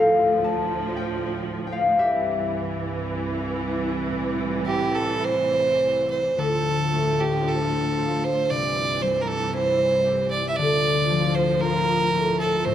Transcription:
0.00 1.96 D2 medium
0.00 1.94 A2 medium
0.00 1.95 F3 medium
0.00 2.12 A4 medium
0.00 1.59 F5 medium
0.44 1.89 A5 medium
0.97 1.67 G5 medium
1.67 3.22 G5 medium
1.72 2.05 F5 medium
1.97 6.33 C2 medium
1.97 4.09 G2 medium
1.97 6.34 E3 medium
1.97 5.20 G4 medium
1.97 5.20 E5 medium
4.10 6.35 A2 medium
4.66 4.96 G4 medium
4.95 5.26 A4 medium
5.25 6.10 C5 medium
6.11 6.41 C5 medium
6.36 8.47 D2 medium
6.36 8.48 A2 medium
6.36 8.55 D3 soft
6.36 8.47 F3 medium
6.36 7.22 A4 medium
6.92 10.25 A3 soft
7.20 7.50 G4 medium
7.43 10.23 D4 soft
7.48 8.25 A4 medium
7.97 9.60 F4 soft
8.24 8.51 C5 medium
8.48 10.54 C2 medium
8.48 10.54 G2 medium
8.48 10.63 C3 soft
8.48 10.54 E3 medium
8.48 9.03 D5 medium
9.02 10.63 G3 soft
9.02 9.23 C5 medium
9.22 9.29 A#4 medium
9.28 9.55 A4 medium
9.53 11.16 E4 medium
9.53 10.30 C5 medium
10.05 12.41 G4 soft
10.31 10.49 D5 medium
10.49 10.58 E5 medium
10.56 12.63 D2 medium
10.56 12.75 A2 medium
10.56 12.71 D3 medium
10.56 12.63 F3 medium
10.56 11.36 D5 loud
11.10 12.71 F3 soft
11.35 11.62 C5 medium
11.60 12.75 F4 medium
11.60 12.39 A#4 loud
12.14 12.75 A3 medium
12.40 12.66 A4 medium
12.65 12.75 A2 medium
12.65 12.75 E3 medium
12.65 12.75 C4 medium
12.65 12.75 C5 loud

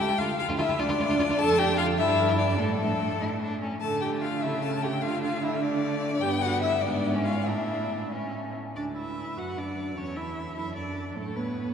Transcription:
0.00 0.19 G4 medium
0.00 0.20 G5 loud
0.09 0.14 C#2 medium
0.09 0.13 E4 medium
0.18 0.23 D2 medium
0.18 0.24 F4 medium
0.18 0.28 F4 loud
0.18 0.38 F5 loud
0.39 0.60 F4 medium
0.39 0.47 F5 loud
0.49 0.53 D2 medium
0.49 0.53 F4 medium
0.58 0.63 D2 medium
0.58 0.82 E4 medium
0.58 0.63 F4 medium
0.58 0.81 E5 loud
0.69 0.73 D2 medium
0.69 0.73 F4 medium
0.79 0.83 D2 loud
0.79 1.39 D4 loud
0.79 0.83 F4 loud
0.79 1.41 D5 loud
0.89 0.93 D2 medium
0.89 0.93 F4 medium
0.99 1.04 D2 medium
0.99 1.04 F4 medium
1.09 1.14 D2 loud
1.09 1.14 F4 medium
1.19 1.23 D2 medium
1.19 1.24 F4 medium
1.29 1.33 D2 medium
1.29 1.34 F4 medium
1.39 2.00 F2 medium
1.39 1.95 D4 medium
1.39 1.61 A4 loud
1.39 1.60 A5 loud
1.59 1.79 G4 loud
1.59 1.77 G5 loud
1.78 1.87 F4 loud
1.78 1.86 F5 loud
1.98 2.61 G2 loud
1.98 2.58 D4 medium
1.98 2.41 E4 loud
1.98 2.38 E5 loud
2.39 2.61 D4 medium
2.39 2.60 D5 loud
2.59 3.19 A2 medium
2.59 3.61 A3 medium
2.59 3.18 D4 medium
2.59 3.60 A4 medium
3.20 3.60 A2 medium
3.20 3.28 E4 medium
3.40 3.60 D4 medium
3.62 3.82 C#4 medium
3.81 4.46 D3 medium
3.81 5.00 A3 medium
3.81 4.03 A4 medium
3.81 4.00 A5 medium
4.01 4.25 G4 medium
4.01 4.09 G5 medium
4.22 4.43 F4 medium
4.22 4.44 F5 medium
4.42 5.05 C#3 medium
4.42 4.63 E4 medium
4.42 4.64 E5 medium
4.62 4.71 A4 medium
4.62 4.84 A5 medium
4.83 4.92 G4 medium
4.83 5.04 G5 medium
5.02 6.21 D3 medium
5.02 5.62 A3 medium
5.02 5.22 F4 medium
5.02 5.22 F5 loud
5.23 5.42 F4 medium
5.23 5.44 F5 medium
5.42 5.51 E4 medium
5.42 5.63 E5 medium
5.62 6.21 A3 medium
5.62 6.21 D4 medium
5.62 6.23 D5 loud
6.21 6.79 G2 medium
6.21 6.80 B3 medium
6.21 6.30 G4 loud
6.21 6.43 G5 loud
6.42 6.62 F#4 medium
6.42 6.61 F#5 loud
6.62 6.71 E4 medium
6.62 6.83 E5 loud
6.82 7.46 G#2 medium
6.82 7.17 B3 medium
6.82 7.27 D4 medium
6.82 7.24 D5 medium
7.16 7.49 C#4 medium
7.24 7.49 F4 medium
7.24 7.48 F5 medium
7.46 8.53 A2 medium
7.46 8.12 D4 medium
7.46 8.12 E4 medium
7.46 8.12 E5 medium
8.12 8.55 C#4 medium
8.76 9.34 D2 soft
8.76 8.95 D4 medium
8.76 9.98 B4 soft
8.76 8.84 D5 medium
8.96 9.38 E4 medium
8.96 9.40 E5 medium
9.37 9.96 F#2 soft
9.37 9.59 F#4 medium
9.37 9.60 F#5 medium
9.57 9.97 D4 medium
9.57 9.99 D5 medium
9.97 10.56 E2 medium
9.97 10.18 C#4 medium
9.97 11.16 A4 soft
9.97 10.18 C#5 medium
10.17 10.57 E4 medium
10.17 10.56 E5 medium
10.57 11.16 F#2 medium
10.57 10.65 E4 medium
10.57 10.75 E5 medium
10.76 11.19 D4 medium
10.76 11.15 D5 soft
11.15 11.74 A2 medium
11.15 11.38 A3 medium
11.15 11.38 A4 medium
11.15 11.74 C#5 soft
11.36 11.74 B3 medium
11.36 11.74 B4 medium

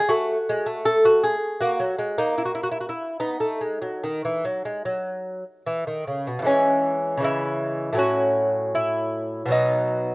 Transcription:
0.00 0.10 G#4 medium
0.09 0.37 A3 medium
0.09 0.81 F#4 medium
0.49 0.66 G#3 medium
0.66 1.35 A3 medium
0.85 1.04 A4 medium
1.05 1.24 F#4 medium
1.23 1.60 G#4 medium
1.61 1.80 A#3 medium
1.61 2.16 F#4 medium
1.80 1.98 F#3 soft
1.99 2.17 G#3 medium
2.18 2.91 A#3 medium
2.18 2.37 D#4 medium
2.38 2.45 E4 medium
2.45 2.54 F#4 medium
2.55 2.63 E4 soft
2.63 2.71 F#4 medium
2.72 2.80 E4 medium
2.81 2.89 F#4 soft
2.89 3.18 E4 medium
3.20 3.40 B3 soft
3.20 5.61 D#4 medium
3.40 3.60 A3 soft
3.61 3.81 G#3 soft
3.82 4.01 F#3 soft
4.04 4.23 D#3 medium
4.25 4.43 E3 soft
4.45 4.63 F#3 medium
4.65 4.84 G#3 soft
4.85 5.43 F#3 medium
5.66 5.85 E3 soft
5.87 6.06 D#3 soft
6.07 6.26 C#3 soft
6.27 6.45 B2 medium
6.39 6.42 C#3 medium
6.39 7.19 E3 soft
6.44 7.20 G#3 soft
6.44 7.21 C#4 medium
7.17 7.92 C#3 medium
7.17 7.95 E3 soft
7.22 7.94 G#3 soft
7.22 7.97 E4 medium
7.93 9.45 A2 medium
7.93 9.45 F#3 soft
7.97 9.47 C#4 soft
7.97 8.72 F#4 medium
8.75 9.49 E4 medium
9.46 10.15 B2 medium
9.46 10.15 F#3 soft
9.51 10.15 B3 soft
9.51 10.15 D#4 medium

